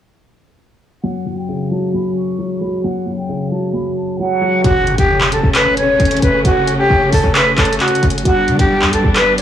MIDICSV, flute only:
0, 0, Header, 1, 2, 480
1, 0, Start_track
1, 0, Tempo, 451128
1, 1101, Time_signature, 4, 2, 24, 8
1, 10022, End_track
2, 0, Start_track
2, 0, Title_t, "Flute"
2, 0, Program_c, 0, 73
2, 1098, Note_on_c, 0, 78, 109
2, 1438, Note_off_c, 0, 78, 0
2, 1460, Note_on_c, 0, 79, 84
2, 1799, Note_off_c, 0, 79, 0
2, 1822, Note_on_c, 0, 81, 79
2, 2043, Note_off_c, 0, 81, 0
2, 2063, Note_on_c, 0, 83, 84
2, 2284, Note_off_c, 0, 83, 0
2, 2302, Note_on_c, 0, 85, 82
2, 2753, Note_off_c, 0, 85, 0
2, 2780, Note_on_c, 0, 83, 79
2, 3002, Note_off_c, 0, 83, 0
2, 3017, Note_on_c, 0, 78, 110
2, 3358, Note_off_c, 0, 78, 0
2, 3378, Note_on_c, 0, 79, 87
2, 3718, Note_off_c, 0, 79, 0
2, 3737, Note_on_c, 0, 81, 88
2, 3960, Note_off_c, 0, 81, 0
2, 3977, Note_on_c, 0, 83, 89
2, 4201, Note_off_c, 0, 83, 0
2, 4218, Note_on_c, 0, 81, 77
2, 4441, Note_off_c, 0, 81, 0
2, 4463, Note_on_c, 0, 78, 90
2, 4913, Note_off_c, 0, 78, 0
2, 4938, Note_on_c, 0, 66, 113
2, 5278, Note_off_c, 0, 66, 0
2, 5299, Note_on_c, 0, 67, 85
2, 5638, Note_off_c, 0, 67, 0
2, 5662, Note_on_c, 0, 69, 85
2, 5883, Note_off_c, 0, 69, 0
2, 5897, Note_on_c, 0, 71, 93
2, 6121, Note_off_c, 0, 71, 0
2, 6142, Note_on_c, 0, 73, 82
2, 6593, Note_off_c, 0, 73, 0
2, 6621, Note_on_c, 0, 71, 74
2, 6842, Note_off_c, 0, 71, 0
2, 6858, Note_on_c, 0, 66, 103
2, 7198, Note_off_c, 0, 66, 0
2, 7218, Note_on_c, 0, 67, 91
2, 7558, Note_off_c, 0, 67, 0
2, 7579, Note_on_c, 0, 69, 97
2, 7802, Note_off_c, 0, 69, 0
2, 7824, Note_on_c, 0, 71, 94
2, 8044, Note_off_c, 0, 71, 0
2, 8061, Note_on_c, 0, 69, 80
2, 8283, Note_off_c, 0, 69, 0
2, 8301, Note_on_c, 0, 66, 94
2, 8564, Note_off_c, 0, 66, 0
2, 8779, Note_on_c, 0, 66, 114
2, 9118, Note_off_c, 0, 66, 0
2, 9141, Note_on_c, 0, 67, 86
2, 9479, Note_off_c, 0, 67, 0
2, 9502, Note_on_c, 0, 69, 84
2, 9723, Note_off_c, 0, 69, 0
2, 9743, Note_on_c, 0, 71, 90
2, 9964, Note_off_c, 0, 71, 0
2, 9983, Note_on_c, 0, 73, 84
2, 10022, Note_off_c, 0, 73, 0
2, 10022, End_track
0, 0, End_of_file